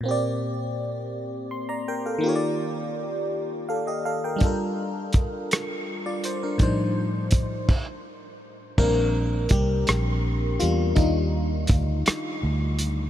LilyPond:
<<
  \new Staff \with { instrumentName = "FM electric piano" } { \time 6/8 \key bes \major \tempo 4. = 55 << { r2 c'''16 <d'' bes''>16 <bes' g''>16 <a' f''>16~ | <a' f''>16 r4. r16 <a' f''>16 <g' ees''>16 <a' f''>16 <bes' g''>16~ | <bes' g''>16 r2 <f' d''>16 c''16 <d' bes'>16~ | <d' bes'>16 r2 r8. |
<bes bes'>4 <g g'>4. <g f'>8 | <ees ees'>4 r2 | } \\ { <bes, bes c' g' d''>2. | <ees bes f' g' cis'' d''>2. | <g d' f' a' bes'>2. | <a, f g d' ees' c''>4. r4. |
<g c' d'>4. r4. | <g d' f'>4. r4. | } >> }
  \new Staff \with { instrumentName = "Fingered electric bass" } { \clef bass \time 6/8 \key bes \major r2. | r2. | r2. | r2. |
bes,,4 c,8 bes,,4 e,8 | ees,4 d,8 r8 d,4 | }
  \new DrumStaff \with { instrumentName = "Drums" } \drummode { \time 6/8 r4. r4. | r4. r4. | <hh bd>4 <hh bd>8 <hh ss>4 hh8 | <hh bd>4 <hh bd>8 <cymc bd>4. |
<cymc bd>4 <hh bd>8 <hh ss>4 hh8 | <hh bd>4 <hh bd>8 <hh ss>4 hh8 | }
>>